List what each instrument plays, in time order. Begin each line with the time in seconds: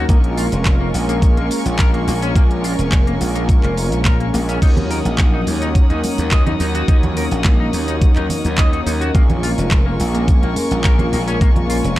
0.09 slap bass A#1, analog synth pad G#3 A#3 C#4 F4 A#4, clean electric guitar A#3, string section A#4 G#5 C#6, kick, closed hi-hat, shaker
0.24 closed hi-hat
0.38 clean electric guitar F4, open hi-hat, shaker
0.52 slap bass F1, closed hi-hat, shaker
0.65 kick, clap, closed hi-hat, shaker
0.81 clean electric guitar A#3
0.94 slap bass A#1, open hi-hat, shaker
1.08 analog synth pad G#3 A#3 C#4 F4 A#4, clean electric guitar A#3, closed hi-hat, shaker
1.22 kick, closed hi-hat, shaker
1.37 slap bass A#1, clean electric guitar A#3, closed hi-hat
1.51 open hi-hat, shaker
1.66 slap bass A#1, closed hi-hat, shaker
1.79 clean electric guitar A#4, kick, clap, closed hi-hat, shaker
1.94 clean electric guitar A#3, closed hi-hat
2.07 slap bass A#1, clean electric guitar A#3, open hi-hat, shaker
2.22 clean electric guitar C#4, closed hi-hat, shaker
2.35 slap bass A#1, analog synth pad G#3 A#3 C#4 F4 A#4, clean electric guitar A#3, kick, closed hi-hat, shaker
2.51 closed hi-hat
2.64 clean electric guitar F4, open hi-hat, shaker
2.79 slap bass F1, closed hi-hat, shaker
2.92 kick, clap, closed hi-hat, shaker
3.07 clean electric guitar A#3, closed hi-hat
3.21 slap bass A#1, open hi-hat, shaker
3.35 analog synth pad G#3 A#3 C#4 F4 A#4, clean electric guitar A#3, closed hi-hat, shaker
3.49 kick, closed hi-hat, shaker
3.63 slap bass F1, clean electric guitar A#3, clap, closed hi-hat
3.77 open hi-hat, shaker
3.92 slap bass A#1, closed hi-hat, shaker
4.05 clean electric guitar A#4, kick, clap, closed hi-hat, shaker
4.20 clean electric guitar A#3, closed hi-hat
4.33 slap bass A#1, analog synth pad G#3 A#3 C#4 F4 A#4, clean electric guitar A#3, open hi-hat, shaker
4.49 clean electric guitar C#4, closed hi-hat, shaker
4.62 slap bass D#2, analog synth pad F#3 A#3 C#4 D#4 A#4, clean electric guitar D#4, string section C#5 F#5 D#6, kick, closed hi-hat, crash, shaker
4.77 closed hi-hat, low conga
4.91 clean electric guitar A#4, open hi-hat, shaker
5.05 slap bass A#1, closed hi-hat, shaker
5.18 kick, clap, closed hi-hat, shaker
5.34 clean electric guitar D#4
5.47 slap bass D#2, open hi-hat, high conga, shaker
5.61 analog synth pad F#3 A#3 C#4 D#4 A#4, clean electric guitar D#4, closed hi-hat, shaker
5.75 kick, closed hi-hat, shaker
5.90 slap bass D#2, clean electric guitar D#4, closed hi-hat
6.04 open hi-hat, high conga, shaker
6.18 slap bass D#2, closed hi-hat, shaker
6.31 clean electric guitar D#5, kick, clap, closed hi-hat, shaker
6.46 clean electric guitar D#4, closed hi-hat, low conga
6.60 slap bass D#2, clean electric guitar D#4, open hi-hat, shaker
6.75 clean electric guitar F#4, closed hi-hat, shaker
6.88 slap bass D#2, analog synth pad F#3 A#3 C#4 D#4 A#4, clean electric guitar D#4, kick, closed hi-hat, shaker
7.03 closed hi-hat, low conga
7.17 clean electric guitar A#4, open hi-hat, shaker
7.31 slap bass A#1, closed hi-hat, shaker
7.44 kick, clap, closed hi-hat, high conga, shaker
7.60 clean electric guitar D#4
7.73 slap bass D#2, open hi-hat, shaker
7.87 analog synth pad F#3 A#3 C#4 D#4 A#4, clean electric guitar D#4, closed hi-hat, shaker
8.02 kick, closed hi-hat, shaker
8.16 slap bass D#2, clean electric guitar D#4, clap, closed hi-hat
8.30 open hi-hat, low conga, shaker
8.45 slap bass D#2, closed hi-hat, shaker
8.58 clean electric guitar D#5, kick, clap, closed hi-hat, shaker
8.73 clean electric guitar D#4, closed hi-hat
8.86 slap bass D#2, clean electric guitar D#4, open hi-hat, shaker
9.01 clean electric guitar F#4, closed hi-hat, shaker
9.14 slap bass A#1, analog synth pad G#3 A#3 C#4 F4 A#4, clean electric guitar A#3, string section A#4 G#5 C#6, kick, closed hi-hat, shaker
9.30 closed hi-hat, low conga
9.43 clean electric guitar F4, open hi-hat, shaker
9.58 slap bass F1, closed hi-hat, shaker
9.71 kick, clap, closed hi-hat, shaker
9.86 clean electric guitar A#3
10.00 slap bass A#1, open hi-hat, high conga, shaker
10.14 analog synth pad G#3 A#3 C#4 F4 A#4, clean electric guitar A#3, closed hi-hat, shaker
10.28 kick, closed hi-hat, shaker
10.43 slap bass A#1, clean electric guitar A#3, closed hi-hat
10.56 open hi-hat, high conga, shaker
10.71 slap bass A#1, closed hi-hat, shaker
10.84 clean electric guitar A#4, kick, clap, closed hi-hat, shaker
10.99 clean electric guitar A#3, closed hi-hat, low conga
11.13 slap bass A#1, clean electric guitar A#3, open hi-hat, shaker
11.28 clean electric guitar C#4, closed hi-hat, shaker
11.41 slap bass A#1, analog synth pad G#3 A#3 C#4 F4 A#4, clean electric guitar A#3, kick, closed hi-hat, shaker
11.56 closed hi-hat, low conga
11.69 clean electric guitar F4, open hi-hat, shaker
11.84 slap bass F1, closed hi-hat, shaker